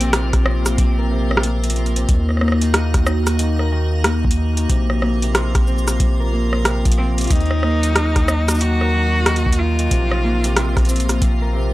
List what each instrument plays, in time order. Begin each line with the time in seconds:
Already playing: sub bass A#1, harp A#3 D#4 F#4 A#4, ambient pad A#3 C4 F4, cello C4
0.01 harp C3, closed hi-hat
0.13 harp C4, cross-stick, closed hi-hat
0.33 harp C3, kick, cross-stick, closed hi-hat
0.46 harp C4, cross-stick
0.66 harp F4, cross-stick, closed hi-hat, cabasa
0.78 harp C3, kick, closed hi-hat
0.99 harp A#4
1.11 harp C3
1.31 cross-stick
1.37 cross-stick
1.43 harp A#3, closed hi-hat
1.64 harp C3, closed hi-hat
1.70 closed hi-hat
1.76 harp C4, closed hi-hat
1.86 closed hi-hat
1.96 harp C3, closed hi-hat
2.09 sub bass D#2, harp D#3, ambient pad D#4 F#4, kick, closed hi-hat
2.29 cross-stick
2.30 cross-stick
2.37 cross-stick
2.41 harp A#3, cross-stick
2.48 cross-stick
2.52 cross-stick
2.61 harp D#3, closed hi-hat
2.74 harp D#4, cross-stick, closed hi-hat
2.94 harp D#3, kick, cross-stick, closed hi-hat
3.07 harp D#4, cross-stick, cabasa
3.27 harp F#4, cross-stick, closed hi-hat, cabasa
3.39 harp D#3, closed hi-hat
3.59 harp A#4, cross-stick
3.72 harp D#3
4.04 harp A#3, cross-stick, closed hi-hat
4.25 harp D#3, kick
4.31 closed hi-hat
4.37 harp D#4
4.57 harp D#3, closed hi-hat
4.69 sub bass A#1, harp C3, ambient pad C4 F4, kick, closed hi-hat
4.90 cross-stick
5.02 harp A#3, cross-stick
5.22 harp C3, closed hi-hat
5.35 harp C4, cross-stick, closed hi-hat
5.55 harp C3, kick, cross-stick, closed hi-hat
5.67 harp C4, cabasa
5.78 cabasa
5.88 harp F4, cross-stick, closed hi-hat, cabasa
5.89 cabasa
6.00 harp C3, kick, closed hi-hat
6.20 harp A#4
6.33 harp A#3
6.53 harp C4, cross-stick
6.65 harp C3, cross-stick, closed hi-hat
6.85 harp F3, kick, closed hi-hat
6.92 closed hi-hat
6.98 cello C4, harp C4
7.18 harp C3, closed hi-hat
7.21 closed hi-hat
7.24 cello F4, closed hi-hat
7.27 sub bass D#2, ambient pad F#3 D#4, cello D#4, kick, closed hi-hat
7.30 harp D#3, closed hi-hat
7.40 closed hi-hat
7.46 closed hi-hat
7.51 cross-stick
7.63 harp A#3, cross-stick
7.83 harp D#3, closed hi-hat
7.96 harp D#4, cross-stick, closed hi-hat
8.16 harp D#3, kick, cross-stick, closed hi-hat
8.28 harp D#4, cross-stick, cabasa
8.48 harp F#4, cross-stick, closed hi-hat, cabasa
8.50 cabasa
8.55 cabasa
8.57 cabasa
8.59 harp D#3, cello F#4, closed hi-hat, cabasa
8.81 harp A#4, cross-stick
8.94 harp D#3
9.26 harp D#3, cross-stick, closed hi-hat
9.36 closed hi-hat
9.46 harp D#3, kick
9.53 closed hi-hat
9.59 harp D#4, cello F4
9.79 harp D#3, closed hi-hat
9.91 sub bass A#1, harp C3, ambient pad C4 F4, kick, closed hi-hat
10.11 cross-stick
10.24 harp A#3
10.44 harp C3, closed hi-hat
10.56 harp C4, cross-stick, closed hi-hat
10.77 harp C3, kick, cross-stick, closed hi-hat
10.78 closed hi-hat
10.85 closed hi-hat
10.89 harp C4, closed hi-hat, cabasa
10.96 closed hi-hat
11.00 closed hi-hat
11.09 harp F4, cross-stick, closed hi-hat, cabasa
11.22 harp C3, kick, closed hi-hat
11.42 harp A#4
11.54 harp C3